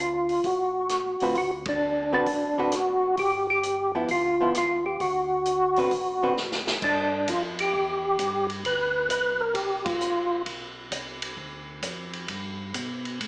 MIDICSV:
0, 0, Header, 1, 5, 480
1, 0, Start_track
1, 0, Tempo, 455581
1, 1428, Time_signature, 4, 2, 24, 8
1, 13987, End_track
2, 0, Start_track
2, 0, Title_t, "Tonewheel organ"
2, 0, Program_c, 0, 16
2, 3, Note_on_c, 0, 65, 76
2, 480, Note_on_c, 0, 66, 83
2, 490, Note_off_c, 0, 65, 0
2, 1294, Note_on_c, 0, 65, 82
2, 1300, Note_off_c, 0, 66, 0
2, 1444, Note_off_c, 0, 65, 0
2, 1451, Note_on_c, 0, 66, 93
2, 1591, Note_off_c, 0, 66, 0
2, 1776, Note_on_c, 0, 62, 82
2, 2248, Note_off_c, 0, 62, 0
2, 2260, Note_on_c, 0, 62, 99
2, 2891, Note_on_c, 0, 66, 95
2, 2902, Note_off_c, 0, 62, 0
2, 3327, Note_off_c, 0, 66, 0
2, 3363, Note_on_c, 0, 67, 104
2, 3656, Note_off_c, 0, 67, 0
2, 3690, Note_on_c, 0, 67, 110
2, 4128, Note_off_c, 0, 67, 0
2, 4332, Note_on_c, 0, 65, 88
2, 4768, Note_off_c, 0, 65, 0
2, 4823, Note_on_c, 0, 65, 87
2, 5107, Note_off_c, 0, 65, 0
2, 5119, Note_on_c, 0, 67, 89
2, 5275, Note_on_c, 0, 66, 88
2, 5278, Note_off_c, 0, 67, 0
2, 6671, Note_off_c, 0, 66, 0
2, 7206, Note_on_c, 0, 62, 77
2, 7683, Note_on_c, 0, 65, 86
2, 7693, Note_off_c, 0, 62, 0
2, 7826, Note_off_c, 0, 65, 0
2, 8011, Note_on_c, 0, 67, 100
2, 8921, Note_off_c, 0, 67, 0
2, 9123, Note_on_c, 0, 71, 95
2, 9577, Note_off_c, 0, 71, 0
2, 9590, Note_on_c, 0, 71, 93
2, 9909, Note_on_c, 0, 70, 79
2, 9923, Note_off_c, 0, 71, 0
2, 10053, Note_on_c, 0, 67, 77
2, 10075, Note_off_c, 0, 70, 0
2, 10376, Note_on_c, 0, 65, 75
2, 10395, Note_off_c, 0, 67, 0
2, 10982, Note_off_c, 0, 65, 0
2, 13987, End_track
3, 0, Start_track
3, 0, Title_t, "Hollow-body jazz guitar"
3, 0, Program_c, 1, 26
3, 1285, Note_on_c, 1, 50, 52
3, 1292, Note_on_c, 1, 60, 55
3, 1295, Note_on_c, 1, 66, 54
3, 1297, Note_on_c, 1, 71, 58
3, 1419, Note_off_c, 1, 50, 0
3, 1423, Note_off_c, 1, 60, 0
3, 1425, Note_off_c, 1, 66, 0
3, 1426, Note_off_c, 1, 71, 0
3, 2240, Note_on_c, 1, 50, 59
3, 2243, Note_on_c, 1, 60, 65
3, 2249, Note_on_c, 1, 66, 61
3, 2252, Note_on_c, 1, 71, 75
3, 2377, Note_off_c, 1, 50, 0
3, 2378, Note_off_c, 1, 60, 0
3, 2382, Note_off_c, 1, 66, 0
3, 2383, Note_off_c, 1, 71, 0
3, 2718, Note_on_c, 1, 50, 61
3, 2725, Note_on_c, 1, 60, 62
3, 2732, Note_on_c, 1, 66, 67
3, 2733, Note_on_c, 1, 71, 59
3, 2856, Note_off_c, 1, 50, 0
3, 2859, Note_off_c, 1, 60, 0
3, 2863, Note_off_c, 1, 66, 0
3, 2864, Note_off_c, 1, 71, 0
3, 4161, Note_on_c, 1, 53, 60
3, 4166, Note_on_c, 1, 59, 66
3, 4176, Note_on_c, 1, 64, 59
3, 4298, Note_off_c, 1, 53, 0
3, 4300, Note_off_c, 1, 59, 0
3, 4305, Note_off_c, 1, 64, 0
3, 4643, Note_on_c, 1, 53, 58
3, 4653, Note_on_c, 1, 59, 60
3, 4656, Note_on_c, 1, 64, 64
3, 4779, Note_off_c, 1, 53, 0
3, 4784, Note_off_c, 1, 59, 0
3, 4785, Note_off_c, 1, 64, 0
3, 6086, Note_on_c, 1, 50, 61
3, 6088, Note_on_c, 1, 60, 65
3, 6095, Note_on_c, 1, 66, 67
3, 6097, Note_on_c, 1, 71, 63
3, 6221, Note_off_c, 1, 50, 0
3, 6222, Note_off_c, 1, 60, 0
3, 6226, Note_off_c, 1, 66, 0
3, 6226, Note_off_c, 1, 71, 0
3, 6561, Note_on_c, 1, 50, 59
3, 6568, Note_on_c, 1, 60, 68
3, 6570, Note_on_c, 1, 66, 63
3, 6574, Note_on_c, 1, 71, 64
3, 6699, Note_off_c, 1, 50, 0
3, 6702, Note_off_c, 1, 60, 0
3, 6703, Note_off_c, 1, 66, 0
3, 6705, Note_off_c, 1, 71, 0
3, 13987, End_track
4, 0, Start_track
4, 0, Title_t, "Tonewheel organ"
4, 0, Program_c, 2, 16
4, 0, Note_on_c, 2, 38, 76
4, 423, Note_off_c, 2, 38, 0
4, 465, Note_on_c, 2, 33, 76
4, 1226, Note_off_c, 2, 33, 0
4, 1278, Note_on_c, 2, 45, 63
4, 1421, Note_off_c, 2, 45, 0
4, 1427, Note_on_c, 2, 38, 79
4, 2345, Note_off_c, 2, 38, 0
4, 2389, Note_on_c, 2, 33, 76
4, 3307, Note_off_c, 2, 33, 0
4, 3344, Note_on_c, 2, 31, 83
4, 4264, Note_off_c, 2, 31, 0
4, 4305, Note_on_c, 2, 38, 75
4, 4753, Note_off_c, 2, 38, 0
4, 4795, Note_on_c, 2, 39, 72
4, 5239, Note_off_c, 2, 39, 0
4, 5273, Note_on_c, 2, 38, 80
4, 6189, Note_off_c, 2, 38, 0
4, 6227, Note_on_c, 2, 33, 73
4, 7147, Note_off_c, 2, 33, 0
4, 7191, Note_on_c, 2, 43, 79
4, 7657, Note_off_c, 2, 43, 0
4, 7671, Note_on_c, 2, 41, 89
4, 8137, Note_off_c, 2, 41, 0
4, 8149, Note_on_c, 2, 40, 72
4, 8616, Note_off_c, 2, 40, 0
4, 8630, Note_on_c, 2, 43, 81
4, 9096, Note_off_c, 2, 43, 0
4, 9110, Note_on_c, 2, 38, 83
4, 9577, Note_off_c, 2, 38, 0
4, 9586, Note_on_c, 2, 36, 84
4, 10055, Note_off_c, 2, 36, 0
4, 10066, Note_on_c, 2, 35, 77
4, 10535, Note_off_c, 2, 35, 0
4, 10554, Note_on_c, 2, 33, 83
4, 11019, Note_off_c, 2, 33, 0
4, 11028, Note_on_c, 2, 35, 78
4, 11496, Note_off_c, 2, 35, 0
4, 11506, Note_on_c, 2, 36, 92
4, 11975, Note_off_c, 2, 36, 0
4, 11984, Note_on_c, 2, 38, 73
4, 12454, Note_off_c, 2, 38, 0
4, 12463, Note_on_c, 2, 41, 88
4, 12934, Note_off_c, 2, 41, 0
4, 12946, Note_on_c, 2, 43, 79
4, 13415, Note_off_c, 2, 43, 0
4, 13431, Note_on_c, 2, 47, 86
4, 13897, Note_off_c, 2, 47, 0
4, 13912, Note_on_c, 2, 45, 72
4, 13987, Note_off_c, 2, 45, 0
4, 13987, End_track
5, 0, Start_track
5, 0, Title_t, "Drums"
5, 304, Note_on_c, 9, 46, 33
5, 409, Note_off_c, 9, 46, 0
5, 461, Note_on_c, 9, 46, 41
5, 465, Note_on_c, 9, 36, 31
5, 567, Note_off_c, 9, 46, 0
5, 570, Note_off_c, 9, 36, 0
5, 940, Note_on_c, 9, 42, 49
5, 945, Note_on_c, 9, 37, 54
5, 1045, Note_off_c, 9, 42, 0
5, 1051, Note_off_c, 9, 37, 0
5, 1265, Note_on_c, 9, 46, 35
5, 1370, Note_off_c, 9, 46, 0
5, 1425, Note_on_c, 9, 46, 42
5, 1428, Note_on_c, 9, 36, 31
5, 1530, Note_off_c, 9, 46, 0
5, 1533, Note_off_c, 9, 36, 0
5, 1743, Note_on_c, 9, 51, 60
5, 1750, Note_on_c, 9, 36, 66
5, 1849, Note_off_c, 9, 51, 0
5, 1855, Note_off_c, 9, 36, 0
5, 2383, Note_on_c, 9, 46, 42
5, 2388, Note_on_c, 9, 36, 32
5, 2489, Note_off_c, 9, 46, 0
5, 2493, Note_off_c, 9, 36, 0
5, 2862, Note_on_c, 9, 42, 50
5, 2867, Note_on_c, 9, 37, 53
5, 2968, Note_off_c, 9, 42, 0
5, 2973, Note_off_c, 9, 37, 0
5, 3342, Note_on_c, 9, 46, 41
5, 3347, Note_on_c, 9, 36, 31
5, 3447, Note_off_c, 9, 46, 0
5, 3453, Note_off_c, 9, 36, 0
5, 3827, Note_on_c, 9, 42, 49
5, 3932, Note_off_c, 9, 42, 0
5, 4302, Note_on_c, 9, 46, 43
5, 4308, Note_on_c, 9, 36, 32
5, 4408, Note_off_c, 9, 46, 0
5, 4413, Note_off_c, 9, 36, 0
5, 4789, Note_on_c, 9, 42, 53
5, 4794, Note_on_c, 9, 37, 59
5, 4894, Note_off_c, 9, 42, 0
5, 4900, Note_off_c, 9, 37, 0
5, 5267, Note_on_c, 9, 46, 39
5, 5270, Note_on_c, 9, 36, 31
5, 5373, Note_off_c, 9, 46, 0
5, 5375, Note_off_c, 9, 36, 0
5, 5747, Note_on_c, 9, 42, 47
5, 5852, Note_off_c, 9, 42, 0
5, 6071, Note_on_c, 9, 46, 37
5, 6177, Note_off_c, 9, 46, 0
5, 6226, Note_on_c, 9, 46, 42
5, 6230, Note_on_c, 9, 36, 31
5, 6332, Note_off_c, 9, 46, 0
5, 6335, Note_off_c, 9, 36, 0
5, 6712, Note_on_c, 9, 38, 42
5, 6817, Note_off_c, 9, 38, 0
5, 6869, Note_on_c, 9, 38, 53
5, 6974, Note_off_c, 9, 38, 0
5, 7031, Note_on_c, 9, 38, 66
5, 7136, Note_off_c, 9, 38, 0
5, 7186, Note_on_c, 9, 49, 62
5, 7188, Note_on_c, 9, 36, 63
5, 7291, Note_off_c, 9, 49, 0
5, 7294, Note_off_c, 9, 36, 0
5, 7666, Note_on_c, 9, 44, 50
5, 7666, Note_on_c, 9, 51, 62
5, 7670, Note_on_c, 9, 36, 19
5, 7771, Note_off_c, 9, 44, 0
5, 7771, Note_off_c, 9, 51, 0
5, 7776, Note_off_c, 9, 36, 0
5, 7993, Note_on_c, 9, 51, 57
5, 8098, Note_off_c, 9, 51, 0
5, 8151, Note_on_c, 9, 36, 20
5, 8256, Note_off_c, 9, 36, 0
5, 8626, Note_on_c, 9, 44, 55
5, 8626, Note_on_c, 9, 51, 61
5, 8630, Note_on_c, 9, 36, 20
5, 8732, Note_off_c, 9, 44, 0
5, 8732, Note_off_c, 9, 51, 0
5, 8736, Note_off_c, 9, 36, 0
5, 8952, Note_on_c, 9, 51, 41
5, 9057, Note_off_c, 9, 51, 0
5, 9111, Note_on_c, 9, 36, 21
5, 9111, Note_on_c, 9, 51, 52
5, 9216, Note_off_c, 9, 36, 0
5, 9217, Note_off_c, 9, 51, 0
5, 9585, Note_on_c, 9, 44, 47
5, 9585, Note_on_c, 9, 51, 59
5, 9589, Note_on_c, 9, 36, 18
5, 9691, Note_off_c, 9, 44, 0
5, 9691, Note_off_c, 9, 51, 0
5, 9694, Note_off_c, 9, 36, 0
5, 10058, Note_on_c, 9, 51, 58
5, 10066, Note_on_c, 9, 36, 19
5, 10164, Note_off_c, 9, 51, 0
5, 10172, Note_off_c, 9, 36, 0
5, 10384, Note_on_c, 9, 51, 68
5, 10389, Note_on_c, 9, 36, 77
5, 10489, Note_off_c, 9, 51, 0
5, 10494, Note_off_c, 9, 36, 0
5, 10543, Note_on_c, 9, 44, 52
5, 10648, Note_off_c, 9, 44, 0
5, 11020, Note_on_c, 9, 51, 53
5, 11025, Note_on_c, 9, 36, 21
5, 11126, Note_off_c, 9, 51, 0
5, 11131, Note_off_c, 9, 36, 0
5, 11502, Note_on_c, 9, 44, 51
5, 11502, Note_on_c, 9, 51, 59
5, 11504, Note_on_c, 9, 36, 23
5, 11607, Note_off_c, 9, 44, 0
5, 11607, Note_off_c, 9, 51, 0
5, 11610, Note_off_c, 9, 36, 0
5, 11821, Note_on_c, 9, 51, 63
5, 11927, Note_off_c, 9, 51, 0
5, 11982, Note_on_c, 9, 36, 23
5, 12088, Note_off_c, 9, 36, 0
5, 12459, Note_on_c, 9, 44, 57
5, 12459, Note_on_c, 9, 51, 58
5, 12464, Note_on_c, 9, 36, 19
5, 12564, Note_off_c, 9, 44, 0
5, 12564, Note_off_c, 9, 51, 0
5, 12570, Note_off_c, 9, 36, 0
5, 12784, Note_on_c, 9, 51, 40
5, 12889, Note_off_c, 9, 51, 0
5, 12940, Note_on_c, 9, 51, 54
5, 12946, Note_on_c, 9, 36, 23
5, 13045, Note_off_c, 9, 51, 0
5, 13052, Note_off_c, 9, 36, 0
5, 13425, Note_on_c, 9, 44, 45
5, 13425, Note_on_c, 9, 51, 59
5, 13429, Note_on_c, 9, 36, 23
5, 13530, Note_off_c, 9, 44, 0
5, 13530, Note_off_c, 9, 51, 0
5, 13535, Note_off_c, 9, 36, 0
5, 13751, Note_on_c, 9, 51, 42
5, 13856, Note_off_c, 9, 51, 0
5, 13913, Note_on_c, 9, 36, 20
5, 13914, Note_on_c, 9, 51, 61
5, 13987, Note_off_c, 9, 36, 0
5, 13987, Note_off_c, 9, 51, 0
5, 13987, End_track
0, 0, End_of_file